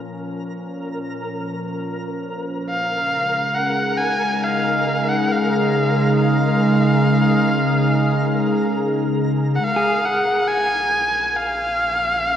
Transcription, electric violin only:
2.69 3.56 F5 medium
3.54 3.99 F#5 medium
3.97 4.45 G#5 medium
4.43 5.10 F5 medium
5.09 5.33 F#5 medium
5.31 6.16 F5 medium
6.16 8.73 F5 medium
9.56 9.65 F#5 medium
9.64 10.06 F5 medium
10.05 10.49 F#5 medium
10.48 11.37 G#5 loud
11.36 12.37 F5 loud

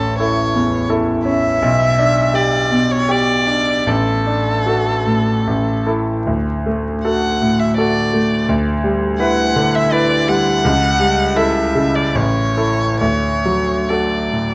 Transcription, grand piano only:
0.00 1.58 A1 soft
0.00 0.40 C#4 soft
0.19 0.51 E4 soft
0.19 0.51 A4 soft
0.54 1.11 E2 soft
0.90 1.22 E4 soft
0.90 1.22 A4 soft
1.25 1.62 C#4 soft
1.62 3.83 B1 soft
1.98 2.57 D4 soft
2.34 2.67 G4 soft
2.71 3.32 B2 soft
3.09 3.44 G4 soft
3.47 3.87 D4 soft
3.86 5.43 A1 soft
4.27 4.91 D4 soft
4.66 5.03 F#4 soft
4.66 5.03 A4 soft
5.06 5.47 A2 soft
5.47 6.25 A1 soft
5.86 6.23 E4 soft
5.86 6.23 A4 soft
6.26 8.44 D2 soft
6.66 7.27 A3 soft
7.05 7.38 F#4 soft
7.05 7.38 A4 soft
7.41 7.99 A2 soft
7.78 8.10 F#4 soft
7.78 8.10 A4 soft
8.13 8.49 A3 soft
8.49 10.60 D2 soft
8.84 9.42 G3 soft
9.20 9.53 E4 soft
9.20 9.53 B4 soft
9.56 10.14 D3 soft
9.92 10.24 E4 soft
9.92 10.25 B4 soft
10.28 10.64 G3 soft
10.64 12.11 C#2 soft
10.99 11.59 G3 soft
11.36 11.71 E4 soft
11.36 11.71 A4 soft
11.75 12.15 C#3 soft
12.15 12.98 A1 soft
12.57 12.96 E4 soft
12.57 12.97 A4 soft
13.01 14.54 D2 soft
13.45 14.15 F#3 soft
13.90 14.28 F#4 soft
13.90 14.28 A4 soft
14.32 14.54 A2 soft

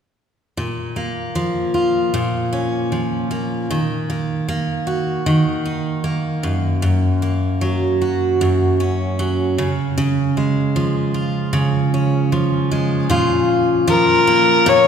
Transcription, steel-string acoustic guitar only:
0.57 2.12 A#2 medium
0.96 3.30 A#3 soft
1.35 2.91 F3 medium
1.74 3.78 F4 soft
2.14 3.78 A#2 medium
2.53 3.78 C#4 soft
2.92 3.70 F3 soft
3.31 4.09 A#3 soft
3.71 5.25 D#3 medium
4.10 4.48 A#3 soft
4.49 6.04 A#3 medium
4.87 8.01 F#4 soft
5.26 6.52 D#3 medium
5.66 6.52 D#4 soft
6.04 7.22 A#3 soft
6.43 6.81 F#2 medium
6.82 8.40 F#2 medium
7.22 9.65 A#3 soft
7.61 9.18 F#3 medium
8.02 9.66 F#4 soft
8.41 9.66 F#2 medium
8.80 11.93 C#4 soft
9.19 9.66 F#3 medium
9.58 9.96 C#3 medium
9.98 11.52 C#3 medium
10.37 12.70 G#3 soft
10.76 12.32 F3 medium
11.14 13.10 F4 soft
11.53 13.09 C#3 medium
11.94 14.88 C#4 soft
12.32 13.87 F3 soft
12.71 13.18 G#3 soft
13.10 14.65 A#2 medium
13.10 14.88 F4 medium
13.88 14.88 F3 medium
14.27 14.88 A#3 medium
14.66 14.88 A#2 medium

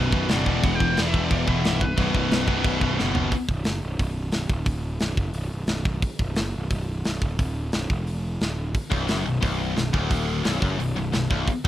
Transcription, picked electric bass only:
0.00 0.11 B0 medium
0.13 0.28 B0 medium
0.31 0.46 F#1 loud
0.46 0.62 E1 medium
0.63 0.79 E1 loud
0.80 0.95 E1 medium
0.98 1.28 E1 medium
1.31 1.46 E1 medium
1.48 1.63 E1 loud
1.64 1.95 C1 medium
1.98 2.13 B0 loud
2.14 2.30 B0 medium
2.31 2.62 B0 medium
2.65 2.80 B0 medium
2.82 2.97 B0 medium
3.01 3.30 F#1 medium
3.49 3.65 B0 medium
3.66 3.82 F#1 medium
3.83 3.98 B0 medium
3.99 4.31 B0 medium
4.33 4.49 B0 medium
4.50 4.97 D1 medium
5.01 5.17 B0 medium
5.18 5.32 F#1 medium
5.33 5.50 B0 medium
5.51 5.67 B0 medium
5.67 5.84 B0 medium
5.85 6.01 B0 loud
6.19 6.36 B0 medium
6.38 6.53 F#1 medium
6.56 6.70 B0 medium
6.71 7.03 B0 medium
7.06 7.21 B0 medium
7.22 7.38 D1 loud
7.39 7.71 D1 loud
7.73 7.89 B0 medium
7.90 8.38 E1 medium
8.41 8.73 D1 medium
8.91 9.08 B0 medium
9.09 9.25 F#1 medium
9.27 9.42 B0 medium
9.43 9.75 B0 medium
9.78 9.94 B0 medium
9.94 10.42 D1 loud
10.46 10.62 B0 medium
10.62 10.79 F#1 medium
10.81 10.96 B0 medium
10.97 11.13 B0 medium
11.14 11.30 B0 medium
11.31 11.47 B0 medium
11.65 11.68 B0 loud

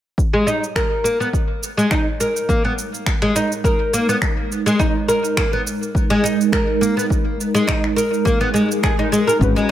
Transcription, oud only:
0.33 0.46 G#3 medium
0.47 0.62 D#4 medium
0.76 1.03 A#4 medium
1.04 1.18 A#3 medium
1.20 1.28 B3 medium
1.77 1.90 G#3 medium
1.91 2.06 D#4 medium
2.20 2.48 A#4 medium
2.49 2.63 A#3 medium
2.65 2.72 B3 medium
3.22 3.35 G#3 medium
3.36 3.50 D#4 medium
3.65 3.92 A#4 medium
3.93 4.07 A#3 medium
4.09 4.16 B3 medium
4.66 4.79 G#3 medium
4.79 4.94 D#4 loud
5.08 5.36 A#4 medium
5.38 5.51 A#3 medium
5.53 5.60 B3 medium
6.10 6.23 G#3 loud
6.24 6.38 D#4 medium
6.53 6.80 A#4 medium
6.81 6.95 A#3 medium
6.97 7.05 B3 medium
7.55 7.67 G#3 medium
7.68 7.83 D#4 medium
7.96 8.24 A#4 medium
8.25 8.39 A#3 medium
8.41 8.48 B3 medium
8.54 8.68 G#3 medium
8.83 8.98 G#4 medium
8.99 9.06 D#4 medium
9.12 9.26 G#3 medium
9.27 9.35 A#4 medium
9.56 9.69 G#3 medium

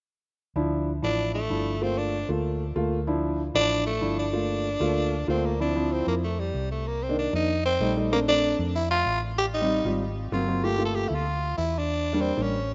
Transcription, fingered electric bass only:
0.56 1.00 D2 medium
1.03 1.47 A1 medium
1.50 2.23 G1 medium
2.29 2.73 D2 medium
2.76 3.49 D2 medium
3.54 3.99 A1 medium
4.02 4.75 G1 medium
4.80 5.25 D2 medium
5.28 6.01 D2 medium
6.07 6.51 F2 medium
6.54 7.27 C2 medium
7.33 7.77 F2 medium
7.80 8.53 A#1 medium
8.59 9.03 F2 medium
9.06 9.79 A1 medium
9.85 10.29 G#1 medium
10.32 11.05 G1 medium
11.10 11.55 D2 medium
11.58 12.31 E2 medium
12.37 12.75 A1 medium

